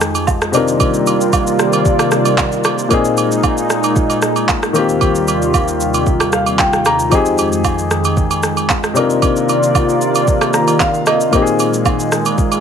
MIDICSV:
0, 0, Header, 1, 4, 480
1, 0, Start_track
1, 0, Tempo, 526316
1, 733, Time_signature, 4, 2, 24, 8
1, 11493, End_track
2, 0, Start_track
2, 0, Title_t, "Grand piano"
2, 0, Program_c, 0, 0
2, 0, Control_c, 0, 64, 127
2, 0, Note_on_c, 0, 53, 75
2, 0, Note_on_c, 0, 60, 69
2, 0, Note_on_c, 0, 63, 66
2, 0, Note_on_c, 0, 67, 66
2, 0, Note_on_c, 0, 68, 80
2, 449, Note_off_c, 0, 53, 0
2, 455, Note_off_c, 0, 60, 0
2, 461, Note_off_c, 0, 63, 0
2, 467, Note_off_c, 0, 67, 0
2, 473, Note_off_c, 0, 68, 0
2, 473, Note_on_c, 0, 48, 76
2, 482, Note_on_c, 0, 60, 71
2, 491, Note_on_c, 0, 62, 71
2, 500, Note_on_c, 0, 63, 68
2, 505, Control_c, 0, 64, 0
2, 509, Note_on_c, 0, 65, 69
2, 519, Note_on_c, 0, 70, 86
2, 650, Control_c, 0, 64, 127
2, 2367, Note_off_c, 0, 48, 0
2, 2371, Note_off_c, 0, 60, 0
2, 2376, Note_off_c, 0, 62, 0
2, 2381, Note_off_c, 0, 63, 0
2, 2385, Note_off_c, 0, 65, 0
2, 2390, Note_off_c, 0, 70, 0
2, 2632, Note_on_c, 0, 46, 75
2, 2643, Note_on_c, 0, 58, 70
2, 2654, Note_on_c, 0, 60, 69
2, 2666, Control_c, 0, 64, 0
2, 2666, Note_on_c, 0, 63, 66
2, 2677, Note_on_c, 0, 68, 83
2, 2833, Control_c, 0, 64, 127
2, 4289, Note_off_c, 0, 46, 0
2, 4295, Note_off_c, 0, 58, 0
2, 4300, Note_off_c, 0, 60, 0
2, 4306, Note_off_c, 0, 63, 0
2, 4312, Note_off_c, 0, 68, 0
2, 4314, Note_on_c, 0, 51, 75
2, 4324, Note_on_c, 0, 58, 72
2, 4336, Note_on_c, 0, 60, 73
2, 4347, Control_c, 0, 64, 0
2, 4348, Note_on_c, 0, 65, 72
2, 4359, Note_on_c, 0, 67, 83
2, 4504, Control_c, 0, 64, 127
2, 5773, Note_on_c, 0, 77, 70
2, 5997, Note_off_c, 0, 77, 0
2, 6014, Note_on_c, 0, 79, 73
2, 6207, Note_off_c, 0, 51, 0
2, 6213, Note_off_c, 0, 58, 0
2, 6218, Note_off_c, 0, 60, 0
2, 6224, Note_off_c, 0, 65, 0
2, 6230, Note_off_c, 0, 67, 0
2, 6237, Note_off_c, 0, 79, 0
2, 6256, Note_on_c, 0, 82, 73
2, 6472, Note_on_c, 0, 53, 74
2, 6478, Note_off_c, 0, 82, 0
2, 6483, Note_on_c, 0, 60, 65
2, 6495, Note_on_c, 0, 63, 69
2, 6506, Control_c, 0, 64, 0
2, 6506, Note_on_c, 0, 67, 70
2, 6517, Note_on_c, 0, 68, 84
2, 6659, Control_c, 0, 64, 127
2, 8129, Note_off_c, 0, 53, 0
2, 8135, Note_off_c, 0, 60, 0
2, 8141, Note_off_c, 0, 63, 0
2, 8146, Note_off_c, 0, 67, 0
2, 8150, Note_on_c, 0, 48, 77
2, 8152, Note_off_c, 0, 68, 0
2, 8160, Note_on_c, 0, 60, 69
2, 8169, Note_on_c, 0, 62, 68
2, 8177, Note_on_c, 0, 63, 72
2, 8186, Control_c, 0, 64, 0
2, 8187, Note_on_c, 0, 65, 74
2, 8196, Note_on_c, 0, 70, 85
2, 8323, Control_c, 0, 64, 127
2, 9616, Note_on_c, 0, 82, 73
2, 9838, Note_off_c, 0, 82, 0
2, 9855, Note_on_c, 0, 77, 72
2, 10045, Note_off_c, 0, 48, 0
2, 10050, Note_off_c, 0, 60, 0
2, 10055, Note_off_c, 0, 62, 0
2, 10059, Note_off_c, 0, 63, 0
2, 10064, Note_off_c, 0, 65, 0
2, 10068, Note_off_c, 0, 70, 0
2, 10077, Note_off_c, 0, 77, 0
2, 10095, Note_on_c, 0, 75, 73
2, 10312, Note_on_c, 0, 46, 75
2, 10318, Note_off_c, 0, 75, 0
2, 10324, Note_on_c, 0, 58, 67
2, 10335, Note_on_c, 0, 60, 65
2, 10345, Control_c, 0, 64, 0
2, 10347, Note_on_c, 0, 63, 69
2, 10358, Note_on_c, 0, 67, 65
2, 10406, Note_off_c, 0, 67, 0
2, 10416, Note_on_c, 0, 68, 83
2, 10518, Control_c, 0, 64, 127
2, 11493, Note_off_c, 0, 46, 0
2, 11493, Note_off_c, 0, 58, 0
2, 11493, Note_off_c, 0, 60, 0
2, 11493, Note_off_c, 0, 63, 0
2, 11493, Note_off_c, 0, 68, 0
2, 11493, End_track
3, 0, Start_track
3, 0, Title_t, "Analog synth pad"
3, 0, Program_c, 1, 89
3, 0, Note_on_c, 1, 41, 79
3, 0, Note_on_c, 1, 51, 69
3, 0, Note_on_c, 1, 56, 88
3, 476, Note_off_c, 1, 41, 0
3, 476, Note_off_c, 1, 51, 0
3, 476, Note_off_c, 1, 56, 0
3, 493, Note_on_c, 1, 48, 82
3, 493, Note_on_c, 1, 51, 76
3, 493, Note_on_c, 1, 55, 77
3, 493, Note_on_c, 1, 65, 94
3, 493, Note_on_c, 1, 74, 75
3, 494, Note_on_c, 1, 58, 76
3, 2631, Note_off_c, 1, 55, 0
3, 2632, Note_off_c, 1, 48, 0
3, 2632, Note_off_c, 1, 51, 0
3, 2632, Note_off_c, 1, 58, 0
3, 2632, Note_off_c, 1, 65, 0
3, 2632, Note_off_c, 1, 74, 0
3, 2654, Note_on_c, 1, 46, 76
3, 2654, Note_on_c, 1, 56, 69
3, 2654, Note_on_c, 1, 63, 85
3, 4317, Note_off_c, 1, 46, 0
3, 4317, Note_off_c, 1, 56, 0
3, 4317, Note_off_c, 1, 63, 0
3, 4334, Note_on_c, 1, 39, 85
3, 4334, Note_on_c, 1, 48, 76
3, 4334, Note_on_c, 1, 55, 77
3, 4334, Note_on_c, 1, 65, 92
3, 6472, Note_off_c, 1, 39, 0
3, 6472, Note_off_c, 1, 48, 0
3, 6472, Note_off_c, 1, 55, 0
3, 6472, Note_off_c, 1, 65, 0
3, 6492, Note_on_c, 1, 41, 79
3, 6492, Note_on_c, 1, 51, 72
3, 6493, Note_on_c, 1, 56, 88
3, 8156, Note_off_c, 1, 41, 0
3, 8156, Note_off_c, 1, 51, 0
3, 8156, Note_off_c, 1, 56, 0
3, 8174, Note_on_c, 1, 51, 74
3, 8175, Note_on_c, 1, 48, 81
3, 8175, Note_on_c, 1, 58, 76
3, 8175, Note_on_c, 1, 65, 89
3, 8175, Note_on_c, 1, 74, 77
3, 10312, Note_off_c, 1, 48, 0
3, 10313, Note_off_c, 1, 58, 0
3, 10313, Note_off_c, 1, 65, 0
3, 10313, Note_off_c, 1, 74, 0
3, 10334, Note_on_c, 1, 46, 79
3, 10334, Note_on_c, 1, 56, 72
3, 11493, Note_off_c, 1, 46, 0
3, 11493, Note_off_c, 1, 51, 0
3, 11493, Note_off_c, 1, 56, 0
3, 11493, End_track
4, 0, Start_track
4, 0, Title_t, "Drums"
4, 9, Note_on_c, 9, 82, 93
4, 13, Note_on_c, 9, 37, 93
4, 100, Note_off_c, 9, 82, 0
4, 104, Note_off_c, 9, 37, 0
4, 136, Note_on_c, 9, 67, 62
4, 137, Note_on_c, 9, 82, 55
4, 227, Note_off_c, 9, 67, 0
4, 228, Note_off_c, 9, 82, 0
4, 248, Note_on_c, 9, 77, 76
4, 253, Note_on_c, 9, 82, 80
4, 254, Note_on_c, 9, 36, 91
4, 339, Note_off_c, 9, 77, 0
4, 344, Note_off_c, 9, 82, 0
4, 345, Note_off_c, 9, 36, 0
4, 379, Note_on_c, 9, 82, 42
4, 381, Note_on_c, 9, 37, 88
4, 471, Note_off_c, 9, 82, 0
4, 472, Note_off_c, 9, 37, 0
4, 487, Note_on_c, 9, 82, 92
4, 499, Note_on_c, 9, 67, 75
4, 579, Note_off_c, 9, 82, 0
4, 591, Note_off_c, 9, 67, 0
4, 619, Note_on_c, 9, 82, 55
4, 710, Note_off_c, 9, 82, 0
4, 730, Note_on_c, 9, 67, 81
4, 732, Note_on_c, 9, 82, 73
4, 733, Note_on_c, 9, 36, 112
4, 821, Note_off_c, 9, 67, 0
4, 824, Note_off_c, 9, 36, 0
4, 824, Note_off_c, 9, 82, 0
4, 857, Note_on_c, 9, 82, 55
4, 948, Note_off_c, 9, 82, 0
4, 973, Note_on_c, 9, 82, 88
4, 979, Note_on_c, 9, 67, 68
4, 1064, Note_off_c, 9, 82, 0
4, 1070, Note_off_c, 9, 67, 0
4, 1103, Note_on_c, 9, 82, 55
4, 1194, Note_off_c, 9, 82, 0
4, 1212, Note_on_c, 9, 36, 83
4, 1213, Note_on_c, 9, 67, 69
4, 1213, Note_on_c, 9, 77, 67
4, 1213, Note_on_c, 9, 82, 82
4, 1303, Note_off_c, 9, 36, 0
4, 1304, Note_off_c, 9, 67, 0
4, 1304, Note_off_c, 9, 77, 0
4, 1304, Note_off_c, 9, 82, 0
4, 1340, Note_on_c, 9, 82, 57
4, 1431, Note_off_c, 9, 82, 0
4, 1453, Note_on_c, 9, 82, 91
4, 1454, Note_on_c, 9, 37, 92
4, 1544, Note_off_c, 9, 82, 0
4, 1545, Note_off_c, 9, 37, 0
4, 1576, Note_on_c, 9, 82, 57
4, 1581, Note_on_c, 9, 67, 73
4, 1667, Note_off_c, 9, 82, 0
4, 1672, Note_off_c, 9, 67, 0
4, 1692, Note_on_c, 9, 36, 108
4, 1692, Note_on_c, 9, 82, 62
4, 1783, Note_off_c, 9, 82, 0
4, 1784, Note_off_c, 9, 36, 0
4, 1816, Note_on_c, 9, 67, 64
4, 1818, Note_on_c, 9, 37, 90
4, 1819, Note_on_c, 9, 82, 53
4, 1907, Note_off_c, 9, 67, 0
4, 1909, Note_off_c, 9, 37, 0
4, 1910, Note_off_c, 9, 82, 0
4, 1928, Note_on_c, 9, 82, 88
4, 1931, Note_on_c, 9, 37, 93
4, 2019, Note_off_c, 9, 82, 0
4, 2023, Note_off_c, 9, 37, 0
4, 2056, Note_on_c, 9, 67, 65
4, 2056, Note_on_c, 9, 82, 52
4, 2147, Note_off_c, 9, 67, 0
4, 2147, Note_off_c, 9, 82, 0
4, 2167, Note_on_c, 9, 77, 76
4, 2173, Note_on_c, 9, 36, 91
4, 2173, Note_on_c, 9, 39, 93
4, 2173, Note_on_c, 9, 82, 77
4, 2258, Note_off_c, 9, 77, 0
4, 2264, Note_off_c, 9, 39, 0
4, 2264, Note_off_c, 9, 82, 0
4, 2265, Note_off_c, 9, 36, 0
4, 2299, Note_on_c, 9, 82, 45
4, 2390, Note_off_c, 9, 82, 0
4, 2408, Note_on_c, 9, 82, 88
4, 2415, Note_on_c, 9, 37, 99
4, 2419, Note_on_c, 9, 67, 74
4, 2499, Note_off_c, 9, 82, 0
4, 2506, Note_off_c, 9, 37, 0
4, 2510, Note_off_c, 9, 67, 0
4, 2539, Note_on_c, 9, 82, 58
4, 2630, Note_off_c, 9, 82, 0
4, 2650, Note_on_c, 9, 67, 82
4, 2654, Note_on_c, 9, 36, 108
4, 2654, Note_on_c, 9, 82, 70
4, 2741, Note_off_c, 9, 67, 0
4, 2745, Note_off_c, 9, 36, 0
4, 2745, Note_off_c, 9, 82, 0
4, 2779, Note_on_c, 9, 82, 57
4, 2870, Note_off_c, 9, 82, 0
4, 2893, Note_on_c, 9, 82, 87
4, 2898, Note_on_c, 9, 67, 69
4, 2984, Note_off_c, 9, 82, 0
4, 2990, Note_off_c, 9, 67, 0
4, 3023, Note_on_c, 9, 82, 57
4, 3114, Note_off_c, 9, 82, 0
4, 3132, Note_on_c, 9, 36, 89
4, 3133, Note_on_c, 9, 67, 71
4, 3133, Note_on_c, 9, 77, 69
4, 3134, Note_on_c, 9, 82, 79
4, 3223, Note_off_c, 9, 36, 0
4, 3224, Note_off_c, 9, 67, 0
4, 3224, Note_off_c, 9, 77, 0
4, 3225, Note_off_c, 9, 82, 0
4, 3260, Note_on_c, 9, 82, 56
4, 3352, Note_off_c, 9, 82, 0
4, 3374, Note_on_c, 9, 82, 99
4, 3375, Note_on_c, 9, 37, 90
4, 3466, Note_off_c, 9, 82, 0
4, 3467, Note_off_c, 9, 37, 0
4, 3498, Note_on_c, 9, 82, 57
4, 3502, Note_on_c, 9, 67, 71
4, 3589, Note_off_c, 9, 82, 0
4, 3593, Note_off_c, 9, 67, 0
4, 3612, Note_on_c, 9, 82, 65
4, 3613, Note_on_c, 9, 36, 113
4, 3704, Note_off_c, 9, 36, 0
4, 3704, Note_off_c, 9, 82, 0
4, 3737, Note_on_c, 9, 67, 64
4, 3740, Note_on_c, 9, 82, 56
4, 3828, Note_off_c, 9, 67, 0
4, 3831, Note_off_c, 9, 82, 0
4, 3849, Note_on_c, 9, 82, 89
4, 3853, Note_on_c, 9, 37, 94
4, 3940, Note_off_c, 9, 82, 0
4, 3944, Note_off_c, 9, 37, 0
4, 3976, Note_on_c, 9, 67, 64
4, 3977, Note_on_c, 9, 82, 53
4, 4068, Note_off_c, 9, 67, 0
4, 4068, Note_off_c, 9, 82, 0
4, 4087, Note_on_c, 9, 77, 74
4, 4094, Note_on_c, 9, 36, 93
4, 4094, Note_on_c, 9, 39, 95
4, 4094, Note_on_c, 9, 82, 78
4, 4179, Note_off_c, 9, 77, 0
4, 4185, Note_off_c, 9, 36, 0
4, 4185, Note_off_c, 9, 39, 0
4, 4186, Note_off_c, 9, 82, 0
4, 4220, Note_on_c, 9, 82, 46
4, 4222, Note_on_c, 9, 37, 87
4, 4312, Note_off_c, 9, 82, 0
4, 4313, Note_off_c, 9, 37, 0
4, 4329, Note_on_c, 9, 82, 90
4, 4340, Note_on_c, 9, 67, 73
4, 4420, Note_off_c, 9, 82, 0
4, 4431, Note_off_c, 9, 67, 0
4, 4460, Note_on_c, 9, 82, 58
4, 4551, Note_off_c, 9, 82, 0
4, 4570, Note_on_c, 9, 67, 78
4, 4573, Note_on_c, 9, 82, 71
4, 4574, Note_on_c, 9, 36, 109
4, 4661, Note_off_c, 9, 67, 0
4, 4665, Note_off_c, 9, 36, 0
4, 4665, Note_off_c, 9, 82, 0
4, 4698, Note_on_c, 9, 82, 57
4, 4790, Note_off_c, 9, 82, 0
4, 4813, Note_on_c, 9, 82, 90
4, 4818, Note_on_c, 9, 67, 70
4, 4904, Note_off_c, 9, 82, 0
4, 4909, Note_off_c, 9, 67, 0
4, 4944, Note_on_c, 9, 82, 54
4, 5035, Note_off_c, 9, 82, 0
4, 5052, Note_on_c, 9, 36, 90
4, 5052, Note_on_c, 9, 67, 69
4, 5052, Note_on_c, 9, 77, 69
4, 5054, Note_on_c, 9, 82, 75
4, 5143, Note_off_c, 9, 36, 0
4, 5144, Note_off_c, 9, 67, 0
4, 5144, Note_off_c, 9, 77, 0
4, 5145, Note_off_c, 9, 82, 0
4, 5180, Note_on_c, 9, 82, 58
4, 5271, Note_off_c, 9, 82, 0
4, 5294, Note_on_c, 9, 82, 98
4, 5385, Note_off_c, 9, 82, 0
4, 5416, Note_on_c, 9, 82, 58
4, 5421, Note_on_c, 9, 67, 72
4, 5507, Note_off_c, 9, 82, 0
4, 5512, Note_off_c, 9, 67, 0
4, 5532, Note_on_c, 9, 36, 107
4, 5532, Note_on_c, 9, 82, 66
4, 5623, Note_off_c, 9, 82, 0
4, 5624, Note_off_c, 9, 36, 0
4, 5655, Note_on_c, 9, 67, 62
4, 5658, Note_on_c, 9, 37, 88
4, 5659, Note_on_c, 9, 82, 56
4, 5746, Note_off_c, 9, 67, 0
4, 5750, Note_off_c, 9, 37, 0
4, 5750, Note_off_c, 9, 82, 0
4, 5768, Note_on_c, 9, 82, 93
4, 5772, Note_on_c, 9, 37, 93
4, 5859, Note_off_c, 9, 82, 0
4, 5863, Note_off_c, 9, 37, 0
4, 5895, Note_on_c, 9, 67, 65
4, 5896, Note_on_c, 9, 82, 51
4, 5987, Note_off_c, 9, 67, 0
4, 5988, Note_off_c, 9, 82, 0
4, 6007, Note_on_c, 9, 77, 75
4, 6012, Note_on_c, 9, 39, 93
4, 6012, Note_on_c, 9, 82, 77
4, 6013, Note_on_c, 9, 36, 89
4, 6098, Note_off_c, 9, 77, 0
4, 6103, Note_off_c, 9, 39, 0
4, 6103, Note_off_c, 9, 82, 0
4, 6104, Note_off_c, 9, 36, 0
4, 6139, Note_on_c, 9, 82, 45
4, 6141, Note_on_c, 9, 37, 87
4, 6230, Note_off_c, 9, 82, 0
4, 6232, Note_off_c, 9, 37, 0
4, 6248, Note_on_c, 9, 82, 88
4, 6255, Note_on_c, 9, 37, 97
4, 6259, Note_on_c, 9, 67, 77
4, 6339, Note_off_c, 9, 82, 0
4, 6346, Note_off_c, 9, 37, 0
4, 6350, Note_off_c, 9, 67, 0
4, 6379, Note_on_c, 9, 82, 58
4, 6470, Note_off_c, 9, 82, 0
4, 6489, Note_on_c, 9, 67, 78
4, 6492, Note_on_c, 9, 82, 71
4, 6493, Note_on_c, 9, 36, 113
4, 6581, Note_off_c, 9, 67, 0
4, 6583, Note_off_c, 9, 82, 0
4, 6584, Note_off_c, 9, 36, 0
4, 6617, Note_on_c, 9, 82, 55
4, 6708, Note_off_c, 9, 82, 0
4, 6732, Note_on_c, 9, 82, 88
4, 6738, Note_on_c, 9, 67, 66
4, 6823, Note_off_c, 9, 82, 0
4, 6829, Note_off_c, 9, 67, 0
4, 6862, Note_on_c, 9, 82, 56
4, 6953, Note_off_c, 9, 82, 0
4, 6972, Note_on_c, 9, 36, 87
4, 6973, Note_on_c, 9, 67, 69
4, 6973, Note_on_c, 9, 77, 73
4, 6973, Note_on_c, 9, 82, 79
4, 7063, Note_off_c, 9, 36, 0
4, 7064, Note_off_c, 9, 67, 0
4, 7064, Note_off_c, 9, 77, 0
4, 7064, Note_off_c, 9, 82, 0
4, 7100, Note_on_c, 9, 82, 58
4, 7191, Note_off_c, 9, 82, 0
4, 7213, Note_on_c, 9, 82, 96
4, 7214, Note_on_c, 9, 37, 88
4, 7304, Note_off_c, 9, 82, 0
4, 7305, Note_off_c, 9, 37, 0
4, 7336, Note_on_c, 9, 82, 58
4, 7342, Note_on_c, 9, 67, 74
4, 7427, Note_off_c, 9, 82, 0
4, 7433, Note_off_c, 9, 67, 0
4, 7452, Note_on_c, 9, 36, 108
4, 7452, Note_on_c, 9, 82, 62
4, 7543, Note_off_c, 9, 82, 0
4, 7544, Note_off_c, 9, 36, 0
4, 7577, Note_on_c, 9, 67, 67
4, 7578, Note_on_c, 9, 82, 56
4, 7668, Note_off_c, 9, 67, 0
4, 7670, Note_off_c, 9, 82, 0
4, 7688, Note_on_c, 9, 82, 89
4, 7692, Note_on_c, 9, 37, 90
4, 7779, Note_off_c, 9, 82, 0
4, 7783, Note_off_c, 9, 37, 0
4, 7816, Note_on_c, 9, 67, 64
4, 7817, Note_on_c, 9, 82, 56
4, 7907, Note_off_c, 9, 67, 0
4, 7908, Note_off_c, 9, 82, 0
4, 7929, Note_on_c, 9, 77, 74
4, 7932, Note_on_c, 9, 39, 92
4, 7932, Note_on_c, 9, 82, 79
4, 7933, Note_on_c, 9, 36, 89
4, 8020, Note_off_c, 9, 77, 0
4, 8023, Note_off_c, 9, 39, 0
4, 8023, Note_off_c, 9, 82, 0
4, 8025, Note_off_c, 9, 36, 0
4, 8059, Note_on_c, 9, 82, 45
4, 8060, Note_on_c, 9, 37, 88
4, 8150, Note_off_c, 9, 82, 0
4, 8151, Note_off_c, 9, 37, 0
4, 8168, Note_on_c, 9, 82, 93
4, 8179, Note_on_c, 9, 67, 76
4, 8259, Note_off_c, 9, 82, 0
4, 8271, Note_off_c, 9, 67, 0
4, 8299, Note_on_c, 9, 82, 59
4, 8390, Note_off_c, 9, 82, 0
4, 8411, Note_on_c, 9, 67, 84
4, 8414, Note_on_c, 9, 36, 114
4, 8414, Note_on_c, 9, 82, 72
4, 8502, Note_off_c, 9, 67, 0
4, 8505, Note_off_c, 9, 36, 0
4, 8505, Note_off_c, 9, 82, 0
4, 8538, Note_on_c, 9, 82, 55
4, 8629, Note_off_c, 9, 82, 0
4, 8654, Note_on_c, 9, 82, 85
4, 8659, Note_on_c, 9, 67, 69
4, 8745, Note_off_c, 9, 82, 0
4, 8750, Note_off_c, 9, 67, 0
4, 8784, Note_on_c, 9, 82, 56
4, 8875, Note_off_c, 9, 82, 0
4, 8892, Note_on_c, 9, 36, 90
4, 8893, Note_on_c, 9, 67, 69
4, 8893, Note_on_c, 9, 77, 68
4, 8894, Note_on_c, 9, 82, 79
4, 8984, Note_off_c, 9, 36, 0
4, 8984, Note_off_c, 9, 67, 0
4, 8984, Note_off_c, 9, 77, 0
4, 8986, Note_off_c, 9, 82, 0
4, 9021, Note_on_c, 9, 82, 58
4, 9112, Note_off_c, 9, 82, 0
4, 9134, Note_on_c, 9, 82, 91
4, 9225, Note_off_c, 9, 82, 0
4, 9257, Note_on_c, 9, 82, 57
4, 9262, Note_on_c, 9, 67, 71
4, 9348, Note_off_c, 9, 82, 0
4, 9353, Note_off_c, 9, 67, 0
4, 9372, Note_on_c, 9, 82, 65
4, 9373, Note_on_c, 9, 36, 109
4, 9463, Note_off_c, 9, 82, 0
4, 9464, Note_off_c, 9, 36, 0
4, 9496, Note_on_c, 9, 67, 61
4, 9498, Note_on_c, 9, 37, 84
4, 9499, Note_on_c, 9, 82, 55
4, 9587, Note_off_c, 9, 67, 0
4, 9589, Note_off_c, 9, 37, 0
4, 9590, Note_off_c, 9, 82, 0
4, 9609, Note_on_c, 9, 82, 88
4, 9612, Note_on_c, 9, 37, 88
4, 9700, Note_off_c, 9, 82, 0
4, 9703, Note_off_c, 9, 37, 0
4, 9737, Note_on_c, 9, 67, 63
4, 9737, Note_on_c, 9, 82, 51
4, 9828, Note_off_c, 9, 67, 0
4, 9828, Note_off_c, 9, 82, 0
4, 9848, Note_on_c, 9, 77, 76
4, 9853, Note_on_c, 9, 39, 96
4, 9853, Note_on_c, 9, 82, 81
4, 9854, Note_on_c, 9, 36, 93
4, 9939, Note_off_c, 9, 77, 0
4, 9944, Note_off_c, 9, 39, 0
4, 9944, Note_off_c, 9, 82, 0
4, 9945, Note_off_c, 9, 36, 0
4, 9979, Note_on_c, 9, 82, 44
4, 10070, Note_off_c, 9, 82, 0
4, 10089, Note_on_c, 9, 82, 92
4, 10095, Note_on_c, 9, 37, 98
4, 10100, Note_on_c, 9, 67, 75
4, 10180, Note_off_c, 9, 82, 0
4, 10186, Note_off_c, 9, 37, 0
4, 10192, Note_off_c, 9, 67, 0
4, 10220, Note_on_c, 9, 82, 58
4, 10311, Note_off_c, 9, 82, 0
4, 10331, Note_on_c, 9, 67, 80
4, 10334, Note_on_c, 9, 36, 109
4, 10334, Note_on_c, 9, 82, 73
4, 10422, Note_off_c, 9, 67, 0
4, 10425, Note_off_c, 9, 36, 0
4, 10425, Note_off_c, 9, 82, 0
4, 10458, Note_on_c, 9, 82, 58
4, 10549, Note_off_c, 9, 82, 0
4, 10573, Note_on_c, 9, 82, 85
4, 10579, Note_on_c, 9, 67, 68
4, 10664, Note_off_c, 9, 82, 0
4, 10670, Note_off_c, 9, 67, 0
4, 10703, Note_on_c, 9, 82, 55
4, 10794, Note_off_c, 9, 82, 0
4, 10812, Note_on_c, 9, 36, 90
4, 10812, Note_on_c, 9, 67, 68
4, 10812, Note_on_c, 9, 77, 71
4, 10813, Note_on_c, 9, 82, 79
4, 10903, Note_off_c, 9, 36, 0
4, 10903, Note_off_c, 9, 67, 0
4, 10903, Note_off_c, 9, 77, 0
4, 10904, Note_off_c, 9, 82, 0
4, 10940, Note_on_c, 9, 82, 58
4, 11031, Note_off_c, 9, 82, 0
4, 11053, Note_on_c, 9, 82, 95
4, 11054, Note_on_c, 9, 37, 90
4, 11144, Note_off_c, 9, 82, 0
4, 11145, Note_off_c, 9, 37, 0
4, 11177, Note_on_c, 9, 82, 59
4, 11181, Note_on_c, 9, 67, 71
4, 11268, Note_off_c, 9, 82, 0
4, 11272, Note_off_c, 9, 67, 0
4, 11292, Note_on_c, 9, 36, 110
4, 11292, Note_on_c, 9, 82, 65
4, 11383, Note_off_c, 9, 82, 0
4, 11384, Note_off_c, 9, 36, 0
4, 11415, Note_on_c, 9, 67, 62
4, 11418, Note_on_c, 9, 82, 57
4, 11493, Note_off_c, 9, 67, 0
4, 11493, Note_off_c, 9, 82, 0
4, 11493, End_track
0, 0, End_of_file